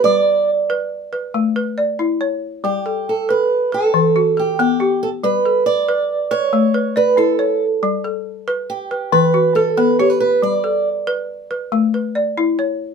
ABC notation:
X:1
M:12/8
L:1/16
Q:3/8=93
K:Glyd
V:1 name="Steel-string acoustic guitar"
d4 z16 z4 | G4 A2 B4 A6 G2 G4 A2 | B4 d6 c6 B2 A4 z2 | z8 G4 B4 A2 B2 c B B2 |
d4 z16 z4 |]
V:2 name="Balafon"
G2 z8 B4 B2 d4 c4- | c2 A6 z2 B4 F2 A4 G4- | G2 A6 z2 B4 B2 d4 c4- | c2 A6 z2 B4 F2 A4 G4- |
G2 A6 z2 B4 B2 d4 c4 |]
V:3 name="Balafon"
G,4 z2 B4 z2 A,4 z2 E4 z2 | G,4 z2 B4 z2 E,4 z2 B,4 z2 | G,4 z2 B4 z2 A,4 z2 E4 z2 | G,4 z2 B4 z2 E,4 z2 B,4 z2 |
G,4 z2 B4 z2 A,4 z2 E4 z2 |]